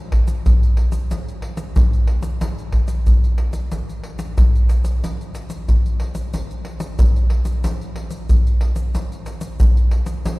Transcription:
0.12 pandeiro, surdo
0.27 pandeiro, shaker
0.46 pandeiro, shaker, surdo
0.63 pandeiro, shaker
0.77 pandeiro
0.92 pandeiro, shaker
1.11 pandeiro, shaker, surdo
1.28 pandeiro, shaker
1.42 pandeiro
1.57 pandeiro, shaker
1.76 pandeiro, shaker, surdo
1.93 pandeiro, shaker
2.07 pandeiro
2.23 pandeiro, shaker
2.41 pandeiro, shaker, surdo
2.58 pandeiro, shaker
2.72 pandeiro, surdo
2.88 pandeiro, shaker
3.07 pandeiro, shaker, surdo
3.24 pandeiro, shaker
3.38 pandeiro
3.53 pandeiro, shaker
3.72 pandeiro, shaker, surdo
3.89 pandeiro, shaker
4.04 pandeiro
4.19 pandeiro, shaker
4.38 pandeiro, shaker, surdo
4.55 pandeiro, shaker
4.69 pandeiro, shaker
4.84 pandeiro, shaker
5.04 pandeiro, shaker, surdo
5.21 pandeiro, shaker
5.35 pandeiro, shaker
5.50 pandeiro, shaker
5.68 pandeiro, shaker, surdo
5.86 pandeiro, shaker
6.00 pandeiro
6.15 pandeiro, shaker
6.34 pandeiro, shaker, surdo
6.51 pandeiro, shaker
6.65 pandeiro
6.80 pandeiro, shaker
6.99 pandeiro, shaker, surdo
7.16 pandeiro, shaker
7.30 pandeiro
7.45 pandeiro, shaker
7.64 pandeiro, shaker, surdo
7.81 pandeiro, shaker
7.96 pandeiro
8.11 pandeiro, shaker
8.29 pandeiro, shaker, surdo
8.47 pandeiro, shaker
8.61 pandeiro
8.76 pandeiro, shaker
8.95 pandeiro, shaker, surdo
9.12 pandeiro, shaker
9.26 pandeiro, shaker
9.41 pandeiro, shaker
9.60 pandeiro, shaker, surdo
9.77 pandeiro, shaker
9.91 pandeiro
10.06 pandeiro, shaker
10.25 pandeiro, shaker, surdo

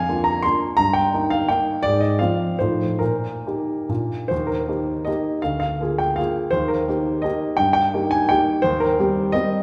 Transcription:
Already playing: F2 G#5
0.09 A#3 D4 F4
0.24 A#5
0.42 A#3 D4 F4 C6
0.77 G2 A#5
0.93 G5
1.14 A#3 D#4
1.30 F5
1.49 A#3 D#4 G5
1.83 G#2 D5
2.00 D#5
2.19 F3 C4 F4 F5
2.59 A2 F3 D#4 F4 C5
2.99 A#2 A#4
3.47 A#3 D#4 G4
3.89 A#2 A#3 D4 F4
4.28 D#2 C5
4.47 A#4
4.68 A#3 D#4 G4
5.05 A#3 D#4 G4 D#5
5.42 D2 F5
5.60 F5
5.81 A#3 F4 G#4
5.98 G5
6.16 A#3 F4 G#4 F5
6.51 D#2 C5
6.68 A#4
6.88 A#3 D#4 G4
7.22 A#3 D#4 G4 D#5
7.57 G2 G5
7.73 G5
7.94 A#3 D#4 G4
8.11 G#5
8.29 A#3 D#4 G4 G5
8.62 D#2 C5
8.80 A#4
8.99 G3 C4 G4
9.32 G3 C4 G4 D#5

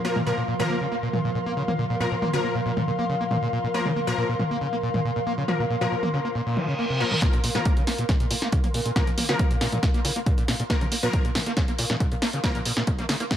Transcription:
Already playing: A#2 F3 A#4 F5 C6
0.05 F3 A#3 A#4
0.16 A#2, mid tom
0.26 A#2 F3 A#3 A#4
0.38 A#2
0.48 A#2
0.59 A#2 F3 A#3 A#4, mid tom
0.70 A#3
0.81 C#3
0.92 A#3
1.03 A#2
1.13 A#2, mid tom
1.25 A#2
1.35 A#2
1.46 A#3
1.57 C#3
1.68 A#3, mid tom
1.79 A#2
1.90 A#2
2.00 A#2 F3 A#3 A#4
2.12 A#2
2.22 A#3, mid tom
2.33 C#3 F3 A#3 A#4
2.44 A#3
2.55 A#2
2.66 A#2
2.77 A#2, mid tom
2.88 A#2
2.99 A#3
3.09 C#3
3.21 A#3
3.31 A#2, mid tom
3.42 A#2
3.53 A#2
3.64 A#2
3.74 F3 A#3 A#4
3.86 C#3, mid tom
3.96 A#3
4.07 A#2 F3 A#3 A#4
4.18 A#2
4.29 A#2
4.40 A#2, mid tom
4.51 A#3
4.61 C#3
4.73 A#3
4.83 A#2
4.94 A#2, mid tom
5.05 A#2
5.16 A#2
5.27 A#3
5.38 C#3
5.48 F3 A#3 A#4, mid tom
5.60 A#2
5.70 A#2
5.81 A#2 F3 A#3 A#4
5.92 A#2
6.03 A#3, mid tom
6.13 C#3
6.25 A#3
6.35 A#2, reverse cymbal
6.47 A#2
6.57 F3, mid tom
6.68 C#3
6.79 A#3
6.90 C3
7.00 G#2 F3 A#3 A#4
7.12 A#2, mid tom
7.22 A#2 F3 A#3 A#4, kick, snare, closed hi-hat
7.33 A#1 A#2, closed hi-hat
7.44 A#1 A#2, open hi-hat
7.55 A#1 A#2 F3 A#3 A#4, snare, mid tom
7.65 A#3, kick, closed hi-hat
7.77 A#1 C#3, closed hi-hat
7.87 A#1 A#3, snare, open hi-hat
7.98 C2 A#2, closed hi-hat
8.09 A#2, kick, snare, closed hi-hat, mid tom
8.20 A#1 A#2, closed hi-hat
8.31 A#2, open hi-hat
8.42 C2 A#3, snare
8.52 C#3, kick, closed hi-hat
8.64 A#1 A#3, closed hi-hat, mid tom
8.74 A#1 A#2, open hi-hat
8.85 A#1 A#2, closed hi-hat
8.96 A#2 F3 A#3 A#4, kick, snare, closed hi-hat
9.07 A#1 A#2, closed hi-hat
9.18 A#1 A#3, open hi-hat, mid tom
9.29 A#1 C#3 F3 A#3 A#4, snare, closed hi-hat
9.39 A#3, kick, closed hi-hat
9.51 A#1 A#2, closed hi-hat
9.61 A#1 A#2, snare, open hi-hat
9.72 C2 A#2, closed hi-hat, mid tom
9.83 A#2, kick, snare, closed hi-hat
9.94 A#1 A#3, closed hi-hat
10.05 A#2 C#3, open hi-hat
10.16 C2 A#3, closed hi-hat
10.26 A#2, kick, closed hi-hat, mid tom
10.38 A#1 A#2, closed hi-hat
10.48 A#1 A#2, snare, open hi-hat
10.59 A#1 A#2, closed hi-hat
10.70 F3 A#3 A#4, kick, snare, closed hi-hat
10.81 A#1 C#3, closed hi-hat, mid tom
10.92 A#1 A#3, open hi-hat
11.03 A#1 A#2 F3 A#3 A#4, closed hi-hat
11.13 A#2, kick, closed hi-hat
11.25 A#1 A#2, closed hi-hat
11.35 A#1 A#2, snare, open hi-hat, mid tom
11.46 C2 A#3, closed hi-hat
11.57 C#3, kick, snare, closed hi-hat
11.68 A#1 A#3, closed hi-hat
11.79 A#2, open hi-hat
11.90 C2 A#2, snare, mid tom
12.00 A#2, kick, closed hi-hat
12.12 A#1 A#2, closed hi-hat
12.22 A#1 A#3, snare, open hi-hat
12.33 A#1 C#3, closed hi-hat
12.44 F3 A#3 A#4, kick, snare, closed hi-hat, mid tom
12.55 A#1 A#2, closed hi-hat
12.65 A#1 A#2, open hi-hat
12.77 A#1 A#2, snare
12.87 A#2, kick, closed hi-hat
12.99 A#1 A#3, closed hi-hat, mid tom
13.09 A#1 C#3, snare, open hi-hat
13.20 C2 A#3, closed hi-hat
13.31 A#2, kick, snare, closed hi-hat

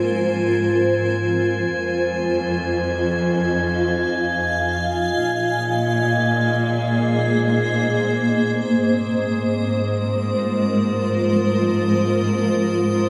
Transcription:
Already playing: G#2 G#3 F4 A#4 C5 G#5
1.74 F2
1.91 D#5
3.07 F5
3.32 G#5
5.21 A#2 A#3
5.77 G#4
6.63 C5
8.70 G#2 G#3 D#6
9.17 A#4
9.38 F4

